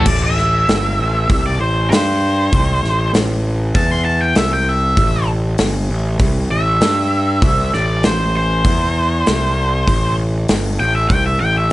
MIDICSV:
0, 0, Header, 1, 4, 480
1, 0, Start_track
1, 0, Key_signature, 0, "minor"
1, 0, Tempo, 612870
1, 51, Time_signature, 4, 2, 24, 8
1, 9183, End_track
2, 0, Start_track
2, 0, Title_t, "Lead electric guitar"
2, 0, Program_c, 0, 29
2, 56, Note_on_c, 0, 74, 91
2, 170, Note_off_c, 0, 74, 0
2, 185, Note_on_c, 0, 76, 89
2, 1114, Note_off_c, 0, 76, 0
2, 1143, Note_on_c, 0, 74, 72
2, 1254, Note_off_c, 0, 74, 0
2, 1257, Note_on_c, 0, 72, 79
2, 1479, Note_off_c, 0, 72, 0
2, 1488, Note_on_c, 0, 72, 92
2, 2427, Note_off_c, 0, 72, 0
2, 2942, Note_on_c, 0, 81, 84
2, 3061, Note_off_c, 0, 81, 0
2, 3061, Note_on_c, 0, 84, 72
2, 3167, Note_off_c, 0, 84, 0
2, 3170, Note_on_c, 0, 81, 85
2, 3292, Note_off_c, 0, 81, 0
2, 3296, Note_on_c, 0, 79, 84
2, 3415, Note_off_c, 0, 79, 0
2, 3418, Note_on_c, 0, 76, 80
2, 3537, Note_off_c, 0, 76, 0
2, 3548, Note_on_c, 0, 79, 73
2, 3673, Note_off_c, 0, 79, 0
2, 3673, Note_on_c, 0, 76, 98
2, 4134, Note_off_c, 0, 76, 0
2, 5098, Note_on_c, 0, 76, 107
2, 6030, Note_off_c, 0, 76, 0
2, 6061, Note_on_c, 0, 74, 85
2, 6294, Note_off_c, 0, 74, 0
2, 6305, Note_on_c, 0, 72, 83
2, 6535, Note_off_c, 0, 72, 0
2, 6553, Note_on_c, 0, 72, 88
2, 7952, Note_off_c, 0, 72, 0
2, 8456, Note_on_c, 0, 79, 96
2, 8572, Note_off_c, 0, 79, 0
2, 8575, Note_on_c, 0, 76, 96
2, 8681, Note_off_c, 0, 76, 0
2, 8684, Note_on_c, 0, 79, 95
2, 8805, Note_off_c, 0, 79, 0
2, 8817, Note_on_c, 0, 76, 79
2, 8927, Note_off_c, 0, 76, 0
2, 8930, Note_on_c, 0, 79, 104
2, 9048, Note_off_c, 0, 79, 0
2, 9065, Note_on_c, 0, 76, 84
2, 9175, Note_off_c, 0, 76, 0
2, 9183, End_track
3, 0, Start_track
3, 0, Title_t, "Picked electric bass"
3, 0, Program_c, 1, 34
3, 49, Note_on_c, 1, 33, 91
3, 501, Note_off_c, 1, 33, 0
3, 538, Note_on_c, 1, 31, 93
3, 760, Note_off_c, 1, 31, 0
3, 777, Note_on_c, 1, 33, 76
3, 1000, Note_off_c, 1, 33, 0
3, 1014, Note_on_c, 1, 36, 98
3, 1239, Note_off_c, 1, 36, 0
3, 1256, Note_on_c, 1, 33, 76
3, 1480, Note_off_c, 1, 33, 0
3, 1493, Note_on_c, 1, 43, 93
3, 1945, Note_off_c, 1, 43, 0
3, 1976, Note_on_c, 1, 36, 95
3, 2201, Note_off_c, 1, 36, 0
3, 2219, Note_on_c, 1, 33, 76
3, 2443, Note_off_c, 1, 33, 0
3, 2454, Note_on_c, 1, 33, 89
3, 2906, Note_off_c, 1, 33, 0
3, 2937, Note_on_c, 1, 40, 93
3, 3388, Note_off_c, 1, 40, 0
3, 3415, Note_on_c, 1, 36, 90
3, 3868, Note_off_c, 1, 36, 0
3, 3895, Note_on_c, 1, 33, 94
3, 4347, Note_off_c, 1, 33, 0
3, 4374, Note_on_c, 1, 31, 87
3, 4601, Note_off_c, 1, 31, 0
3, 4617, Note_on_c, 1, 33, 76
3, 4843, Note_off_c, 1, 33, 0
3, 4853, Note_on_c, 1, 36, 89
3, 5081, Note_off_c, 1, 36, 0
3, 5094, Note_on_c, 1, 33, 71
3, 5321, Note_off_c, 1, 33, 0
3, 5337, Note_on_c, 1, 43, 90
3, 5788, Note_off_c, 1, 43, 0
3, 5813, Note_on_c, 1, 36, 97
3, 6040, Note_off_c, 1, 36, 0
3, 6062, Note_on_c, 1, 33, 82
3, 6285, Note_off_c, 1, 33, 0
3, 6302, Note_on_c, 1, 33, 95
3, 6749, Note_off_c, 1, 33, 0
3, 6773, Note_on_c, 1, 40, 90
3, 7224, Note_off_c, 1, 40, 0
3, 7262, Note_on_c, 1, 36, 90
3, 7708, Note_off_c, 1, 36, 0
3, 7736, Note_on_c, 1, 33, 92
3, 8184, Note_off_c, 1, 33, 0
3, 8215, Note_on_c, 1, 31, 93
3, 8438, Note_off_c, 1, 31, 0
3, 8462, Note_on_c, 1, 33, 82
3, 8681, Note_off_c, 1, 33, 0
3, 8696, Note_on_c, 1, 36, 98
3, 8918, Note_off_c, 1, 36, 0
3, 8936, Note_on_c, 1, 33, 68
3, 9157, Note_off_c, 1, 33, 0
3, 9183, End_track
4, 0, Start_track
4, 0, Title_t, "Drums"
4, 44, Note_on_c, 9, 49, 104
4, 46, Note_on_c, 9, 36, 96
4, 122, Note_off_c, 9, 49, 0
4, 124, Note_off_c, 9, 36, 0
4, 296, Note_on_c, 9, 38, 32
4, 375, Note_off_c, 9, 38, 0
4, 537, Note_on_c, 9, 46, 56
4, 543, Note_on_c, 9, 38, 109
4, 615, Note_off_c, 9, 46, 0
4, 622, Note_off_c, 9, 38, 0
4, 1016, Note_on_c, 9, 36, 102
4, 1019, Note_on_c, 9, 46, 57
4, 1094, Note_off_c, 9, 36, 0
4, 1097, Note_off_c, 9, 46, 0
4, 1505, Note_on_c, 9, 46, 60
4, 1511, Note_on_c, 9, 38, 108
4, 1583, Note_off_c, 9, 46, 0
4, 1589, Note_off_c, 9, 38, 0
4, 1979, Note_on_c, 9, 36, 97
4, 1981, Note_on_c, 9, 46, 55
4, 2058, Note_off_c, 9, 36, 0
4, 2060, Note_off_c, 9, 46, 0
4, 2229, Note_on_c, 9, 38, 33
4, 2307, Note_off_c, 9, 38, 0
4, 2460, Note_on_c, 9, 46, 58
4, 2466, Note_on_c, 9, 38, 112
4, 2538, Note_off_c, 9, 46, 0
4, 2545, Note_off_c, 9, 38, 0
4, 2936, Note_on_c, 9, 36, 105
4, 2936, Note_on_c, 9, 46, 63
4, 3014, Note_off_c, 9, 46, 0
4, 3015, Note_off_c, 9, 36, 0
4, 3410, Note_on_c, 9, 46, 59
4, 3417, Note_on_c, 9, 38, 115
4, 3489, Note_off_c, 9, 46, 0
4, 3495, Note_off_c, 9, 38, 0
4, 3893, Note_on_c, 9, 36, 98
4, 3894, Note_on_c, 9, 46, 57
4, 3972, Note_off_c, 9, 36, 0
4, 3972, Note_off_c, 9, 46, 0
4, 4371, Note_on_c, 9, 46, 62
4, 4377, Note_on_c, 9, 38, 115
4, 4449, Note_off_c, 9, 46, 0
4, 4456, Note_off_c, 9, 38, 0
4, 4851, Note_on_c, 9, 46, 58
4, 4853, Note_on_c, 9, 36, 111
4, 4929, Note_off_c, 9, 46, 0
4, 4931, Note_off_c, 9, 36, 0
4, 5333, Note_on_c, 9, 46, 55
4, 5339, Note_on_c, 9, 38, 106
4, 5411, Note_off_c, 9, 46, 0
4, 5418, Note_off_c, 9, 38, 0
4, 5812, Note_on_c, 9, 36, 106
4, 5814, Note_on_c, 9, 46, 52
4, 5891, Note_off_c, 9, 36, 0
4, 5893, Note_off_c, 9, 46, 0
4, 6061, Note_on_c, 9, 38, 35
4, 6139, Note_off_c, 9, 38, 0
4, 6291, Note_on_c, 9, 46, 56
4, 6297, Note_on_c, 9, 38, 112
4, 6369, Note_off_c, 9, 46, 0
4, 6375, Note_off_c, 9, 38, 0
4, 6772, Note_on_c, 9, 36, 101
4, 6774, Note_on_c, 9, 46, 61
4, 6851, Note_off_c, 9, 36, 0
4, 6852, Note_off_c, 9, 46, 0
4, 7256, Note_on_c, 9, 46, 61
4, 7262, Note_on_c, 9, 38, 112
4, 7334, Note_off_c, 9, 46, 0
4, 7340, Note_off_c, 9, 38, 0
4, 7734, Note_on_c, 9, 36, 98
4, 7739, Note_on_c, 9, 46, 59
4, 7813, Note_off_c, 9, 36, 0
4, 7817, Note_off_c, 9, 46, 0
4, 8211, Note_on_c, 9, 46, 66
4, 8218, Note_on_c, 9, 38, 121
4, 8290, Note_off_c, 9, 46, 0
4, 8296, Note_off_c, 9, 38, 0
4, 8693, Note_on_c, 9, 36, 109
4, 8695, Note_on_c, 9, 46, 59
4, 8772, Note_off_c, 9, 36, 0
4, 8773, Note_off_c, 9, 46, 0
4, 9183, End_track
0, 0, End_of_file